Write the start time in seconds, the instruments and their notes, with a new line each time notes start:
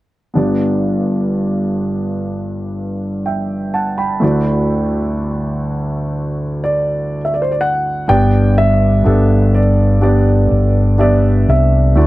0.34 grand piano G1 G2 B3 D4 G4 D5
3.26 grand piano E5 G5
3.74 grand piano F#5 A5
3.98 grand piano G5 B5
4.20 grand piano D2 D3 A3 E4 F#4 D5
6.64 grand piano D5
7.25 grand piano E5
7.34 grand piano D5
7.42 grand piano C5
7.52 grand piano D5
7.61 grand piano F#5
8.08 fingered electric bass G1, grand piano G2 B3 D4 G4 D5 G5
8.58 grand piano E5
9.04 fingered electric bass G1, grand piano B3 D4 G4 A4
9.55 grand piano D5
10.01 grand piano B3 D4 G4 D5
10.51 fingered electric bass G1
10.98 grand piano B3 D4 G4 D5 E5
11.48 fingered electric bass C2, grand piano E5
11.95 fingered electric bass D2, grand piano D3 A3 E4 F#4 D5